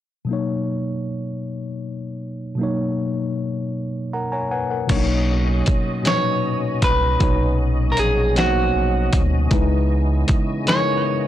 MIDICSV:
0, 0, Header, 1, 6, 480
1, 0, Start_track
1, 0, Key_signature, 5, "major"
1, 0, Tempo, 769231
1, 177, Time_signature, 6, 3, 24, 8
1, 7036, End_track
2, 0, Start_track
2, 0, Title_t, "Clean electric guitar"
2, 0, Program_c, 0, 27
2, 3788, Note_on_c, 0, 73, 100
2, 4266, Note_off_c, 0, 73, 0
2, 4268, Note_on_c, 0, 71, 84
2, 4718, Note_off_c, 0, 71, 0
2, 4941, Note_on_c, 0, 70, 70
2, 4981, Note_off_c, 0, 70, 0
2, 4988, Note_on_c, 0, 68, 97
2, 5225, Note_off_c, 0, 68, 0
2, 5227, Note_on_c, 0, 66, 94
2, 5737, Note_off_c, 0, 66, 0
2, 6666, Note_on_c, 0, 73, 112
2, 7036, Note_off_c, 0, 73, 0
2, 7036, End_track
3, 0, Start_track
3, 0, Title_t, "Tine electric piano"
3, 0, Program_c, 1, 4
3, 155, Note_on_c, 1, 47, 50
3, 167, Note_on_c, 1, 54, 47
3, 181, Note_on_c, 1, 58, 46
3, 193, Note_on_c, 1, 63, 49
3, 206, Note_on_c, 1, 73, 58
3, 278, Control_c, 1, 64, 127
3, 1581, Note_off_c, 1, 47, 0
3, 1587, Note_off_c, 1, 54, 0
3, 1594, Note_off_c, 1, 58, 0
3, 1595, Note_on_c, 1, 47, 52
3, 1600, Note_off_c, 1, 63, 0
3, 1606, Note_off_c, 1, 73, 0
3, 1607, Note_on_c, 1, 54, 50
3, 1617, Note_on_c, 1, 58, 51
3, 1631, Note_on_c, 1, 63, 52
3, 1643, Note_on_c, 1, 73, 59
3, 2571, Note_off_c, 1, 73, 0
3, 2580, Note_on_c, 1, 78, 49
3, 2580, Note_on_c, 1, 82, 52
3, 2583, Note_on_c, 1, 70, 42
3, 2688, Note_off_c, 1, 82, 0
3, 2692, Note_off_c, 1, 78, 0
3, 2694, Note_off_c, 1, 70, 0
3, 2695, Note_on_c, 1, 82, 51
3, 2696, Note_on_c, 1, 80, 50
3, 2702, Note_on_c, 1, 73, 49
3, 2808, Note_off_c, 1, 80, 0
3, 2810, Note_off_c, 1, 82, 0
3, 2813, Note_off_c, 1, 73, 0
3, 2816, Note_on_c, 1, 78, 60
3, 2816, Note_on_c, 1, 80, 55
3, 2820, Note_on_c, 1, 71, 46
3, 2929, Note_off_c, 1, 78, 0
3, 2930, Note_off_c, 1, 80, 0
3, 2933, Note_off_c, 1, 71, 0
3, 2937, Note_on_c, 1, 78, 50
3, 2939, Note_on_c, 1, 70, 42
3, 3021, Note_off_c, 1, 47, 0
3, 3027, Note_off_c, 1, 54, 0
3, 3032, Note_off_c, 1, 58, 0
3, 3039, Note_off_c, 1, 63, 0
3, 3040, Note_on_c, 1, 47, 75
3, 3047, Note_on_c, 1, 54, 83
3, 3054, Note_on_c, 1, 58, 78
3, 3061, Note_on_c, 1, 62, 63
3, 3066, Control_c, 1, 64, 0
3, 3066, Note_on_c, 1, 73, 94
3, 3099, Note_off_c, 1, 62, 0
3, 3099, Note_on_c, 1, 63, 79
3, 3165, Note_off_c, 1, 78, 0
3, 3166, Note_off_c, 1, 70, 0
3, 3189, Control_c, 1, 64, 127
3, 3542, Note_off_c, 1, 47, 0
3, 3546, Note_off_c, 1, 54, 0
3, 3549, Note_off_c, 1, 58, 0
3, 3555, Note_off_c, 1, 73, 0
3, 3572, Note_off_c, 1, 63, 0
3, 3764, Note_on_c, 1, 47, 65
3, 3772, Note_on_c, 1, 54, 59
3, 3778, Note_on_c, 1, 46, 63
3, 3784, Note_on_c, 1, 63, 58
3, 3792, Note_on_c, 1, 71, 76
3, 4264, Note_off_c, 1, 47, 0
3, 4268, Note_off_c, 1, 54, 0
3, 4271, Note_off_c, 1, 46, 0
3, 4274, Note_off_c, 1, 63, 0
3, 4278, Note_off_c, 1, 71, 0
3, 4487, Note_on_c, 1, 47, 78
3, 4492, Note_on_c, 1, 54, 65
3, 4500, Note_on_c, 1, 46, 64
3, 4507, Note_on_c, 1, 63, 71
3, 4513, Note_on_c, 1, 73, 74
3, 4986, Note_off_c, 1, 47, 0
3, 4988, Note_off_c, 1, 54, 0
3, 4992, Note_off_c, 1, 46, 0
3, 4996, Note_off_c, 1, 63, 0
3, 4999, Note_off_c, 1, 73, 0
3, 5211, Note_on_c, 1, 59, 71
3, 5220, Note_on_c, 1, 54, 60
3, 5226, Note_on_c, 1, 58, 59
3, 5231, Note_on_c, 1, 63, 66
3, 5237, Note_on_c, 1, 72, 64
3, 5267, Note_off_c, 1, 72, 0
3, 5277, Note_on_c, 1, 73, 69
3, 5708, Note_off_c, 1, 59, 0
3, 5712, Note_off_c, 1, 54, 0
3, 5715, Note_off_c, 1, 58, 0
3, 5718, Note_off_c, 1, 63, 0
3, 5741, Note_off_c, 1, 73, 0
3, 5929, Note_on_c, 1, 49, 82
3, 5933, Note_on_c, 1, 56, 73
3, 5940, Note_on_c, 1, 63, 85
3, 5944, Control_c, 1, 64, 0
3, 5946, Note_on_c, 1, 64, 77
3, 5953, Note_on_c, 1, 71, 89
3, 6069, Control_c, 1, 64, 127
3, 6427, Note_off_c, 1, 49, 0
3, 6429, Note_off_c, 1, 56, 0
3, 6432, Note_off_c, 1, 63, 0
3, 6435, Note_off_c, 1, 64, 0
3, 6438, Note_off_c, 1, 71, 0
3, 6650, Note_on_c, 1, 49, 66
3, 6656, Note_on_c, 1, 56, 61
3, 6664, Note_on_c, 1, 63, 57
3, 6669, Note_on_c, 1, 64, 63
3, 6676, Note_on_c, 1, 70, 70
3, 7036, Note_off_c, 1, 49, 0
3, 7036, Note_off_c, 1, 56, 0
3, 7036, Note_off_c, 1, 63, 0
3, 7036, Note_off_c, 1, 64, 0
3, 7036, Note_off_c, 1, 70, 0
3, 7036, End_track
4, 0, Start_track
4, 0, Title_t, "Tonewheel organ"
4, 0, Program_c, 2, 16
4, 3059, Note_on_c, 2, 75, 73
4, 3060, Note_on_c, 2, 54, 54
4, 3061, Note_on_c, 2, 61, 67
4, 5913, Note_off_c, 2, 54, 0
4, 5940, Note_on_c, 2, 52, 62
4, 5940, Note_on_c, 2, 56, 61
4, 5942, Note_on_c, 2, 59, 61
4, 7036, Note_off_c, 2, 52, 0
4, 7036, Note_off_c, 2, 56, 0
4, 7036, Note_off_c, 2, 59, 0
4, 7036, Note_off_c, 2, 61, 0
4, 7036, Note_off_c, 2, 75, 0
4, 7036, End_track
5, 0, Start_track
5, 0, Title_t, "Sub bass"
5, 0, Program_c, 3, 38
5, 3060, Note_on_c, 3, 35, 103
5, 3513, Note_off_c, 3, 35, 0
5, 3546, Note_on_c, 3, 36, 48
5, 3592, Note_off_c, 3, 36, 0
5, 4262, Note_on_c, 3, 36, 93
5, 4476, Note_off_c, 3, 36, 0
5, 4501, Note_on_c, 3, 35, 90
5, 4954, Note_off_c, 3, 35, 0
5, 4985, Note_on_c, 3, 34, 93
5, 5436, Note_off_c, 3, 34, 0
5, 5463, Note_on_c, 3, 34, 91
5, 5676, Note_off_c, 3, 34, 0
5, 5704, Note_on_c, 3, 38, 102
5, 5916, Note_off_c, 3, 38, 0
5, 5942, Note_on_c, 3, 37, 107
5, 6394, Note_off_c, 3, 37, 0
5, 6427, Note_on_c, 3, 38, 48
5, 6472, Note_off_c, 3, 38, 0
5, 7036, End_track
6, 0, Start_track
6, 0, Title_t, "Drums"
6, 3053, Note_on_c, 9, 42, 59
6, 3054, Note_on_c, 9, 49, 85
6, 3056, Note_on_c, 9, 36, 104
6, 3115, Note_off_c, 9, 42, 0
6, 3116, Note_off_c, 9, 49, 0
6, 3118, Note_off_c, 9, 36, 0
6, 3533, Note_on_c, 9, 42, 64
6, 3542, Note_on_c, 9, 36, 87
6, 3595, Note_off_c, 9, 42, 0
6, 3605, Note_off_c, 9, 36, 0
6, 3776, Note_on_c, 9, 42, 72
6, 3790, Note_on_c, 9, 38, 113
6, 3838, Note_off_c, 9, 42, 0
6, 3852, Note_off_c, 9, 38, 0
6, 4256, Note_on_c, 9, 42, 78
6, 4259, Note_on_c, 9, 36, 89
6, 4319, Note_off_c, 9, 42, 0
6, 4321, Note_off_c, 9, 36, 0
6, 4495, Note_on_c, 9, 42, 59
6, 4497, Note_on_c, 9, 36, 107
6, 4558, Note_off_c, 9, 42, 0
6, 4560, Note_off_c, 9, 36, 0
6, 4973, Note_on_c, 9, 42, 64
6, 5035, Note_off_c, 9, 42, 0
6, 5219, Note_on_c, 9, 42, 62
6, 5232, Note_on_c, 9, 38, 105
6, 5281, Note_off_c, 9, 42, 0
6, 5295, Note_off_c, 9, 38, 0
6, 5695, Note_on_c, 9, 42, 77
6, 5699, Note_on_c, 9, 36, 92
6, 5757, Note_off_c, 9, 42, 0
6, 5761, Note_off_c, 9, 36, 0
6, 5933, Note_on_c, 9, 42, 60
6, 5937, Note_on_c, 9, 36, 107
6, 5995, Note_off_c, 9, 42, 0
6, 5999, Note_off_c, 9, 36, 0
6, 6414, Note_on_c, 9, 42, 62
6, 6423, Note_on_c, 9, 36, 85
6, 6476, Note_off_c, 9, 42, 0
6, 6486, Note_off_c, 9, 36, 0
6, 6658, Note_on_c, 9, 42, 74
6, 6672, Note_on_c, 9, 38, 111
6, 6720, Note_off_c, 9, 42, 0
6, 6734, Note_off_c, 9, 38, 0
6, 7036, End_track
0, 0, End_of_file